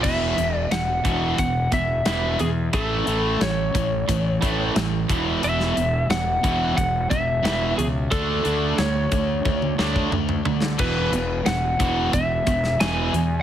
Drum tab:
CC |x---------------|----------------|----------------|----------------|
HH |--x-x-x-x-x-x-x-|x-x-x-x-x-x-x-x-|x-x-x-x-x-x-x-x-|x-x-x-x---------|
SD |----o-------o---|----o-------o---|-o--o-------o---|----o-----o----o|
T1 |----------------|----------------|----------------|--------oo------|
T2 |----------------|----------------|----------------|------------oo--|
FT |----------------|----------------|----------------|--------------o-|
BD |o-----o-o-o-----|o-----o-o-o---o-|------o-o-o-----|o-----o-o--o----|

CC |x---------------|
HH |x-x-x-x-x-x-x-x-|
SD |----o------oo---|
T1 |----------------|
T2 |----------------|
FT |----------------|
BD |o-----o-o-o-----|